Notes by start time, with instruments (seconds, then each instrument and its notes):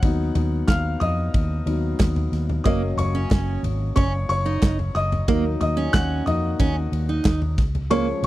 Already playing: grand piano F#5 F#6
0.03 fingered electric bass D#2, grand piano F#3 B3 D#4, kick, ride
0.35 fingered electric bass D#2, floor tom, ride
0.68 fingered electric bass D#2, grand piano F5 F6, kick, snare, clap, ride
1.00 fingered electric bass F2, grand piano D#5 D#6, floor tom, ride
1.34 fingered electric bass D#2, kick, ride
1.66 fingered electric bass D#2, grand piano F#3 B3 D#4, ride
1.99 fingered electric bass D#2, kick, snare, clap, ride
2.16 floor tom
2.32 fingered electric bass D#2, snare, ride
2.49 floor tom
2.64 fingered electric bass F#1, grand piano F#3 A#3 C#4 D#5 D#6, steel-string acoustic guitar A#3, kick, ride
2.97 fingered electric bass F#1, grand piano C#5 C#6, floor tom, ride
3.15 steel-string acoustic guitar C#4
3.31 fingered electric bass F#1, kick, snare, clap, ride
3.63 fingered electric bass G#1, floor tom, ride
3.96 fingered electric bass F#1, steel-string acoustic guitar C#4, grand piano C#5 C#6, kick, ride
4.29 fingered electric bass F#1, grand piano C#5 C#6, ride
4.46 steel-string acoustic guitar D#4, ride
4.62 fingered electric bass F#1, kick, snare, clap, ride
4.79 floor tom
4.95 fingered electric bass F#1, grand piano D#5 D#6, snare, ride
5.12 floor tom, ride
5.28 fingered electric bass D#2, grand piano F#3 A#3 D#4, steel-string acoustic guitar A#3, kick, ride
5.61 fingered electric bass D#2, grand piano D#5 D#6, floor tom, ride
5.77 steel-string acoustic guitar C#4
5.93 fingered electric bass D#2, grand piano F#5 F#6, kick, snare, clap, ride
6.26 fingered electric bass F2, grand piano A#3 D#4 F#4 D#5 D#6, floor tom, ride
6.59 fingered electric bass D#2, steel-string acoustic guitar C#4, kick, ride
6.92 fingered electric bass D#2, ride
7.09 steel-string acoustic guitar D#4
7.25 fingered electric bass D#2, kick, snare, clap, ride
7.42 floor tom
7.58 fingered electric bass C#2, kick, snare, ride
7.75 floor tom, ride
7.90 grand piano F3 G#3 C#4 C#5 C#6, steel-string acoustic guitar A#3, ride
8.23 fingered electric bass C#2, ride